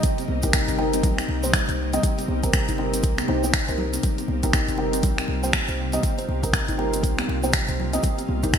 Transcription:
Already playing: ambient pad C3 G3 A#3 D#4, felt piano C4 D#4 G4 D#5
0.03 kick, closed hi-hat, low conga, shaker
0.18 kalimba C4, closed hi-hat, muted conga, shaker
0.28 808-style bass C2, high conga
0.43 felt piano C4 D#4 G4 A#4, kalimba D#4, kick, closed hi-hat, muted conga, high conga, shaker
0.53 finger snap, kick, closed hi-hat, shaker
0.68 808-style bass G1, kalimba C4, closed hi-hat, shaker
0.78 felt piano C4 D#4 G4 A#4, muted conga
0.93 kalimba C4, closed hi-hat, shaker
1.03 808-style bass C2, kick, closed hi-hat, muted conga, high conga, low conga, shaker
1.18 kalimba C4, finger snap, closed hi-hat, shaker
1.28 808-style bass C2, muted conga
1.43 felt piano C4 D#4 G4 C5, kalimba C5, shaker
1.53 finger snap, kick, closed hi-hat, muted conga, low conga, shaker
1.68 808-style bass C2, kalimba C5, closed hi-hat, shaker
1.93 felt piano C4 D#4 G4 D#5, kalimba G4, closed hi-hat, muted conga, high conga, shaker
2.03 kick, closed hi-hat, shaker
2.18 kalimba C4, closed hi-hat, muted conga, shaker
2.28 808-style bass C2, high conga
2.43 felt piano C4 D#4 G4 A#4, kalimba C5, kick, closed hi-hat, muted conga, high conga, shaker
2.53 finger snap, kick, closed hi-hat, shaker
2.68 808-style bass G1, kalimba D#4, closed hi-hat, shaker
2.78 felt piano C4 D#4 G4 A#4, muted conga
2.93 kalimba C4, closed hi-hat, shaker
3.03 808-style bass C2, kick, closed hi-hat, muted conga, shaker
3.18 kalimba C4, finger snap, closed hi-hat, high conga, shaker
3.28 808-style bass C2, felt piano C4 D#4 G4 C5, kalimba D#4, muted conga
3.43 felt piano C4 D#4 G4 C5, kalimba D#4, high conga, shaker
3.53 finger snap, kick, closed hi-hat, shaker
3.68 808-style bass C2, felt piano C4 D#4 G4 A#4, kalimba C5, closed hi-hat, shaker
3.78 kalimba G4, low conga
3.93 kalimba C4, closed hi-hat, muted conga, shaker
4.03 ambient pad F4, kick, closed hi-hat, low conga, shaker
4.18 kalimba C4, closed hi-hat, muted conga, shaker
4.28 808-style bass C2, high conga
4.43 felt piano C4 D#4 G4 A#4, kalimba D#4, kick, closed hi-hat, muted conga, high conga, shaker
4.53 finger snap, kick, closed hi-hat, shaker
4.68 808-style bass G1, kalimba C4, closed hi-hat, shaker
4.78 felt piano C4 D#4 G4 A#4, muted conga
4.93 kalimba C4, closed hi-hat, shaker
5.02 808-style bass C2, kick, closed hi-hat, muted conga, high conga, low conga, shaker
5.18 kalimba C4, finger snap, closed hi-hat, shaker
5.28 808-style bass C2, muted conga
5.43 felt piano C4 D#4 G4 C5, kalimba C5, shaker
5.53 finger snap, kick, closed hi-hat, muted conga, low conga, shaker
5.68 808-style bass C2, kalimba C5, closed hi-hat, shaker
5.92 felt piano C4 D#4 G4 D#5, kalimba G4, closed hi-hat, muted conga, high conga, shaker
6.03 kick, closed hi-hat, shaker
6.18 kalimba C5, closed hi-hat, muted conga, shaker
6.29 808-style bass C2, high conga
6.43 felt piano C4 D#4 G4 A#4, kalimba C5, kick, closed hi-hat, muted conga, high conga, shaker
6.53 finger snap, kick, closed hi-hat, shaker
6.68 808-style bass G1, kalimba D#4, closed hi-hat, shaker
6.78 felt piano C4 D#4 G4 A#4, muted conga
6.93 kalimba C4, closed hi-hat, shaker
7.03 808-style bass C2, kick, closed hi-hat, muted conga, shaker
7.18 kalimba C4, finger snap, closed hi-hat, high conga, shaker
7.28 808-style bass C2, muted conga
7.43 felt piano C4 D#4 G4 C5, kalimba C5, high conga, shaker
7.53 finger snap, kick, closed hi-hat, muted conga, shaker
7.68 808-style bass C2, kalimba C5, closed hi-hat, shaker
7.80 low conga
7.93 felt piano C4 D#4 G4 D#5, kalimba C4, closed hi-hat, muted conga, shaker
8.03 kick, closed hi-hat, low conga, shaker
8.18 kalimba C4, closed hi-hat, muted conga, shaker
8.28 808-style bass C2, high conga
8.43 felt piano C4 D#4 G4 A#4, kalimba D#4, kick, closed hi-hat, muted conga, high conga, shaker
8.53 finger snap, kick, closed hi-hat, shaker

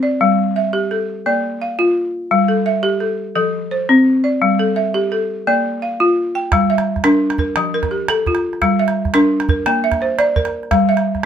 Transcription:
0.03 balafon D5
0.21 balafon G3
0.56 balafon E5
0.73 balafon G4
0.91 balafon A4
1.26 balafon A#3 D5
1.62 balafon F5
1.79 balafon F4
2.31 balafon G3
2.48 balafon A4
2.66 balafon E5
2.83 balafon G4
3.00 balafon A4
3.36 balafon F3 A4
3.71 balafon C5
3.89 balafon C4
4.24 balafon D5
4.42 balafon G3
4.59 balafon A4
4.76 balafon E5
4.94 balafon G4
5.12 balafon A4
5.47 balafon A#3 D5
5.82 balafon F5
6.00 balafon F4
6.35 balafon G5
6.52 balafon G3, calabash thump, calabash click
6.70 balafon E5
6.78 calabash click
6.96 calabash thump, calabash click
7.04 balafon D4 A#4, calabash click
7.30 calabash click
7.38 balafon A#4, calabash thump
7.56 balafon F3, calabash click
7.74 balafon A#4
7.83 calabash thump, calabash click
7.91 balafon G4, calabash click
8.08 balafon A4, calabash click
8.26 balafon F4, calabash thump, calabash click
8.35 calabash click
8.53 calabash click
8.62 balafon G3, calabash thump, calabash click
8.79 balafon E5
8.88 calabash click
9.05 calabash thump, calabash click
9.14 balafon D4 A#4, calabash click
9.40 calabash click
9.49 balafon A#4, calabash thump
9.66 balafon A#3, calabash click
9.84 balafon E5
9.92 calabash thump, calabash click
10.01 balafon C5, calabash click
10.19 balafon D5, calabash click
10.36 balafon A#4, calabash thump, calabash click
10.45 calabash click
10.63 calabash click
10.71 balafon G3, calabash thump, calabash click
10.89 balafon E5
10.97 calabash click
11.15 calabash thump, calabash click

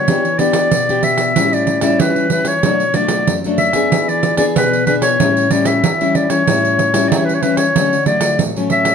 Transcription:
Already playing: clarinet C#5
0.08 nylon-string guitar E3 B3 D4 G4, pandeiro
0.25 pandeiro
0.39 nylon-string guitar B3 D4 G4, clarinet D5, pandeiro
0.53 pandeiro
0.71 nylon-string guitar B2, pandeiro
0.89 nylon-string guitar B3 D4 G4, pandeiro
1.03 clarinet E5, pandeiro
1.18 pandeiro
1.36 nylon-string guitar A2 G3 C#4 E4, pandeiro
1.53 clarinet D5, pandeiro
1.67 pandeiro
1.81 nylon-string guitar G3 C#4 E4, clarinet D5, pandeiro
2.00 nylon-string guitar E3, clarinet B4, pandeiro
2.16 pandeiro
2.30 nylon-string guitar G3 C#4 E4, clarinet B4, pandeiro
2.45 clarinet C#5, pandeiro
2.63 nylon-string guitar B2 F#3 A3 D4, pandeiro
2.80 pandeiro
2.94 nylon-string guitar F#3 A3 D4, clarinet D5, pandeiro
3.08 pandeiro
3.27 nylon-string guitar F#2, pandeiro
3.44 nylon-string guitar F#3 A3 D4, pandeiro
3.58 clarinet E5, pandeiro
3.73 nylon-string guitar B3 D4 G#4, pandeiro
3.92 nylon-string guitar E3, pandeiro
4.08 clarinet D5, pandeiro
4.23 pandeiro
4.37 nylon-string guitar B3 D4 G#4, clarinet D5, pandeiro
4.56 nylon-string guitar B2, clarinet B4, pandeiro
4.73 pandeiro
4.86 nylon-string guitar B3 D4 G#4, clarinet B4, pandeiro
5.02 clarinet C#5, pandeiro
5.20 nylon-string guitar A2 G3 C#4 E4, pandeiro
5.37 pandeiro
5.51 nylon-string guitar G3 C#4 E4, clarinet D5, pandeiro
5.65 clarinet E5, pandeiro
5.83 nylon-string guitar E3, pandeiro
6.01 nylon-string guitar G3 C#4 E4, pandeiro
6.15 clarinet D5, pandeiro
6.29 nylon-string guitar G3 C#4 E4, clarinet C#5, pandeiro
6.47 nylon-string guitar A2 G3 C#4 E4, pandeiro
6.65 pandeiro
6.79 pandeiro
6.94 nylon-string guitar G3 C#4 E4, pandeiro
7.08 nylon-string guitar E3, clarinet D5, pandeiro
7.17 clarinet C#5
7.25 clarinet B4
7.29 pandeiro
7.34 clarinet C#5
7.42 nylon-string guitar G3 C#4 E4, clarinet B4, pandeiro
7.57 clarinet C#5, pandeiro
7.76 nylon-string guitar D3 F#3 A3 C#4, pandeiro
7.93 pandeiro
8.06 nylon-string guitar F#3 A3, clarinet D5, pandeiro
8.21 pandeiro
8.39 nylon-string guitar A2, pandeiro
8.56 nylon-string guitar F#3 A3 C#4, pandeiro
8.70 clarinet E5, pandeiro
8.85 pandeiro

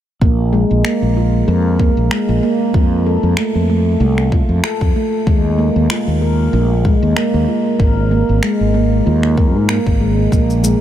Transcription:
0.21 fretless electric bass A#1, handpan A#3, kick
0.53 handpan G#3
0.71 fretless electric bass A#1
0.84 handpan A#3, finger snap
1.02 fretless electric bass A#1
1.17 handpan F4
1.48 fretless electric bass F2, handpan A#4
1.79 handpan A#3, kick
1.97 fretless electric bass A#1
2.11 handpan G#3, finger snap
2.29 fretless electric bass A#1
2.43 handpan A#3
2.74 fretless electric bass F2, handpan F4, kick
3.06 handpan A4
3.23 fretless electric bass F2
3.37 handpan A3, finger snap
3.55 fretless electric bass F2
3.70 handpan A3
4.00 fretless electric bass C2, handpan A3
4.18 finger snap
4.32 handpan F4, kick
4.49 fretless electric bass F2
4.64 handpan A4, finger snap
4.81 fretless electric bass F2, kick
4.96 handpan A3
5.27 fretless electric bass D#2, handpan G#3, kick
5.58 handpan A#3
5.76 fretless electric bass D#2
5.90 handpan F4, finger snap
6.07 fretless electric bass D#2
6.22 handpan A#4
6.53 fretless electric bass A#1, handpan A#3
6.85 handpan G#3, kick
7.02 fretless electric bass D#2
7.16 handpan A#3, finger snap
7.34 fretless electric bass D#2
7.48 handpan F4
7.79 fretless electric bass G#1, handpan A#4, kick
8.11 handpan A#3
8.29 fretless electric bass G#1
8.43 handpan G#3, finger snap
8.60 fretless electric bass G#1
8.74 handpan A#3
9.06 fretless electric bass D#2, handpan F4
9.23 finger snap
9.38 handpan A#4, kick
9.56 fretless electric bass G#2
9.69 handpan A#3, finger snap
9.86 fretless electric bass G#1, kick
10.01 handpan G#3
10.32 fretless electric bass A#1, handpan A#3, kick, shaker
10.50 shaker
10.64 handpan G#3, shaker

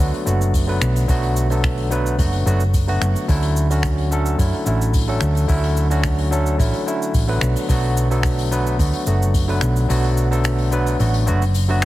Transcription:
Already playing: tine electric piano D3
0.00 fingered electric bass D2, tine electric piano F#3 A3 B3 F#4, cabasa
0.14 open hi-hat
0.25 fingered electric bass F#1, tine electric piano D3 F#3 A3 B3 F#4, cabasa
0.41 cabasa
0.54 kick, open hi-hat, cabasa
0.67 tine electric piano D3 F#3 A3 B3 B4, open hi-hat
0.81 fingered electric bass B1, finger snap, cabasa
0.95 open hi-hat, cabasa
1.08 fingered electric bass B1, tine electric piano D3 F#3 A3 B3 F#4, kick, open hi-hat, cabasa
1.23 open hi-hat
1.36 cabasa
1.50 tine electric piano D3 F#3 A3 B3 A4, open hi-hat, cabasa
1.64 finger snap, kick, open hi-hat, cabasa
1.77 open hi-hat
1.90 tine electric piano D3 F#3 A3 B3 B4, cabasa
2.06 cabasa
2.18 fingered electric bass F#1, tine electric piano D3 F#3 A3 B3 F#4, kick, open hi-hat, cabasa
2.32 open hi-hat
2.45 fingered electric bass F#1, tine electric piano D3 F#3 A3 B3 F#4, cabasa
2.60 cabasa
2.74 kick, open hi-hat, cabasa
2.87 tine electric piano D3 F#3 A3 B3 F#4, open hi-hat
3.01 fingered electric bass F#1, finger snap, cabasa
3.15 open hi-hat, cabasa
3.28 fingered electric bass D2, tine electric piano D3 F#3 A3 C#4 E4, kick, open hi-hat, cabasa
3.42 open hi-hat
3.56 cabasa
3.70 tine electric piano D3 F#3 A3 C#4 F#4, open hi-hat, cabasa
3.83 finger snap, kick, open hi-hat, cabasa
3.98 open hi-hat
4.11 tine electric piano D3 F#3 A3 C#4 A4, cabasa
4.26 cabasa
4.38 fingered electric bass F#2, tine electric piano D3 F#3 A3 C#4 E4, kick, open hi-hat, cabasa
4.53 open hi-hat
4.65 fingered electric bass A1, tine electric piano D3 F#3 A3 C#4 E4, cabasa
4.82 cabasa
4.94 kick, open hi-hat, cabasa
5.07 tine electric piano D3 F#3 A3 C#4 A4, open hi-hat
5.21 fingered electric bass D2, finger snap, cabasa
5.35 open hi-hat, cabasa
5.48 fingered electric bass D2, tine electric piano D3 F#3 A3 C#4 E4, kick, open hi-hat, cabasa
5.63 open hi-hat
5.77 cabasa
5.90 tine electric piano D3 F#3 A3 C#4 F#4, open hi-hat, cabasa
6.04 finger snap, kick, open hi-hat, cabasa
6.18 open hi-hat
6.30 tine electric piano D3 F#3 A3 C#4 A4, cabasa
6.46 cabasa
6.58 fingered electric bass A1, tine electric piano D3 F#3 A3 C#4 E4, kick, open hi-hat, cabasa
6.73 open hi-hat
6.86 tine electric piano D3 F#3 A3 C#4 E4, cabasa
7.02 cabasa
7.14 fingered electric bass A1, kick, open hi-hat, cabasa
7.27 tine electric piano D3 F#3 A3 B3 B4, open hi-hat
7.41 fingered electric bass B1, finger snap, cabasa
7.55 open hi-hat, cabasa
7.68 fingered electric bass B1, tine electric piano D3 F#3 A3 B3 F#4, kick, open hi-hat, cabasa
7.83 open hi-hat
7.97 cabasa
8.10 tine electric piano D3 F#3 A3 B3 A4, open hi-hat, cabasa
8.23 finger snap, kick, open hi-hat, cabasa
8.39 open hi-hat
8.51 tine electric piano D3 F#3 A3 B3 B4, cabasa
8.67 cabasa
8.78 fingered electric bass D2, tine electric piano D3 F#3 A3 B3 F#4, kick, open hi-hat, cabasa
8.93 open hi-hat
9.06 fingered electric bass F#1, tine electric piano D3 F#3 A3 B3 F#4, cabasa
9.22 cabasa
9.34 kick, open hi-hat, cabasa
9.48 tine electric piano D3 F#3 A3 B3 B4, open hi-hat
9.61 fingered electric bass B1, finger snap, cabasa
9.76 open hi-hat, cabasa
9.89 fingered electric bass B1, tine electric piano D3 F#3 A3 B3 F#4, open hi-hat, cabasa
10.04 open hi-hat
10.17 cabasa
10.31 tine electric piano D3 F#3 A3 B3 A4, open hi-hat, cabasa
10.44 finger snap, open hi-hat, cabasa
10.58 open hi-hat
10.71 tine electric piano D3 F#3 A3 B3 B4, cabasa
10.86 open hi-hat, cabasa
10.99 fingered electric bass A1, tine electric piano D3 F#3 A3 B3 F#4, open hi-hat, cabasa
11.14 open hi-hat
11.26 fingered electric bass F#1, tine electric piano D3 F#3 A3 B3 F#4, cabasa
11.42 open hi-hat, cabasa
11.54 open hi-hat, cabasa
11.68 tine electric piano D3 F#3 A3 B3 F#4, open hi-hat

